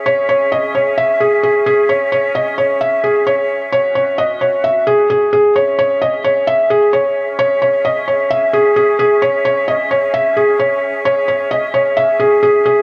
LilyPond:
<<
  \new Staff \with { instrumentName = "Felt piano" } { \time 4/4 \key cis \minor \tempo 4 = 131 cis''8 cis''8 dis''8 cis''8 e''8 gis'8 gis'8 gis'8 | cis''8 cis''8 dis''8 cis''8 e''8 gis'8 cis''4 | cis''8 cis''8 dis''8 cis''8 e''8 gis'8 gis'8 gis'8 | cis''8 cis''8 dis''8 cis''8 e''8 gis'8 cis''4 |
cis''8 cis''8 dis''8 cis''8 e''8 gis'8 gis'8 gis'8 | cis''8 cis''8 dis''8 cis''8 e''8 gis'8 cis''4 | cis''8 cis''8 dis''8 cis''8 e''8 gis'8 gis'8 gis'8 | }
  \new Staff \with { instrumentName = "Flute section" } { \time 4/4 \key cis \minor << { <cis' e''>1~ | <cis' e''>1~ | <cis' e''>1 | <cis' e''>1~ |
<cis' e''>1~ | <cis' e''>1~ | <cis' e''>1 | } \\ { gis'1~ | gis'1 | fis'1 | gis'1~ |
gis'1~ | gis'1~ | gis'1 | } >> }
>>